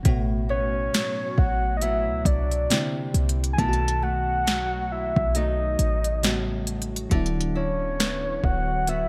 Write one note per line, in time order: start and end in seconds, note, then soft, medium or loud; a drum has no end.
0.00 2.65 B2 medium
0.00 0.16 G#3 medium
0.00 0.16 D#4 medium
0.00 2.67 F#4 medium
0.05 0.90 A1 loud
0.05 2.80 A2 medium
0.05 2.66 A3 medium
0.05 2.67 B3 medium
0.05 2.68 F#4 medium
0.05 kick medium
0.05 closed hi-hat medium
0.49 1.81 B3 medium
0.49 1.40 C#5 loud
0.94 1.81 F#3 medium
0.94 snare loud
0.94 closed hi-hat medium
1.38 2.09 A1 loud
1.38 1.76 F#5 loud
1.38 kick medium
1.77 1.83 D#5 medium
1.82 2.80 F#3 medium
1.82 2.81 B3 medium
1.82 2.28 E5 loud
1.82 closed hi-hat medium
2.07 2.25 C#2 loud
2.25 2.68 C2 medium
2.25 3.14 D5 medium
2.25 kick medium
2.25 closed hi-hat medium
2.52 closed hi-hat soft
2.70 3.58 C3 medium
2.70 3.58 D3 medium
2.70 3.59 A#3 medium
2.70 3.59 C4 medium
2.70 3.60 E4 medium
2.70 snare loud
2.70 closed hi-hat medium
3.14 3.57 C2 loud
3.14 closed hi-hat medium
3.29 closed hi-hat medium
3.44 closed hi-hat medium
3.53 6.18 D#3 medium
3.53 3.61 G#5 medium
3.58 5.12 B1 loud
3.58 6.23 B2 medium
3.58 6.19 A3 medium
3.58 6.20 B3 medium
3.58 3.68 E4 medium
3.58 4.05 A5 loud
3.58 kick medium
3.58 closed hi-hat medium
3.68 6.24 F#4 medium
3.73 closed hi-hat medium
3.88 closed hi-hat medium
4.02 5.35 A3 medium
4.02 4.93 F#5 loud
4.47 5.35 F#3 medium
4.47 snare loud
4.47 closed hi-hat medium
4.92 5.38 E5 loud
5.16 5.77 B1 loud
5.16 kick medium
5.35 7.58 F#3 medium
5.35 7.99 A3 medium
5.35 6.34 D#4 medium
5.35 6.68 D#5 loud
5.35 closed hi-hat medium
5.79 7.07 A1 loud
5.79 closed hi-hat medium
6.04 closed hi-hat soft
6.23 7.22 A2 medium
6.23 7.11 C#3 medium
6.23 7.12 G3 medium
6.23 7.12 B3 medium
6.23 7.12 F#4 medium
6.23 snare loud
6.23 closed hi-hat medium
6.67 closed hi-hat medium
6.82 closed hi-hat medium
6.96 closed hi-hat medium
7.10 8.40 D1 loud
7.10 9.09 D3 medium
7.10 9.09 F#3 medium
7.10 9.09 B3 medium
7.10 kick loud
7.10 closed hi-hat medium
7.15 9.09 E4 medium
7.26 closed hi-hat medium
7.41 closed hi-hat medium
7.55 8.88 E4 medium
7.55 8.46 C#5 loud
8.00 8.87 B3 medium
8.00 snare loud
8.00 closed hi-hat medium
8.44 9.09 D1 loud
8.44 8.90 F#5 loud
8.44 kick medium
8.87 9.09 B3 medium
8.87 9.09 E4 medium
8.87 9.09 F#4 medium
8.87 9.09 E5 loud
8.87 closed hi-hat medium